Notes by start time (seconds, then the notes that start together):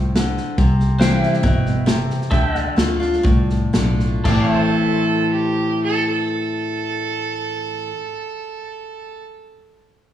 Already playing: C2 A2 C5 F5 G5
0.16 D3, snare, hi-hat pedal
0.37 snare
0.58 C2 C3, kick, snare
0.80 snare
0.99 E3 G3 C4 E4 C5 F5 G5, snare, hi-hat pedal
1.21 E5, snare
1.33 snare
1.43 G1 B2, kick, snare
1.66 snare
1.86 C3, snare, hi-hat pedal
2.10 snare
2.21 snare
2.31 D2 D3 A4 E5 G5, kick, snare
2.49 D#5 F#5
2.55 snare
2.61 D5 F5
2.76 D2 D3 A3 D4 F4, snare, hi-hat pedal
3.00 D4 F4, snare
3.13 snare
3.23 C2 A2, kick, snare
3.49 snare
3.73 B1 D3 A3 D4 F4, snare, hi-hat pedal
3.99 snare
4.24 A1 A2 E3 A3 C4 A4 D5 F5, kick, floor tom, crash
4.29 E4
4.42 C#5
4.47 E5
4.52 A4 C5
5.32 G4
5.84 A4
6.10 A4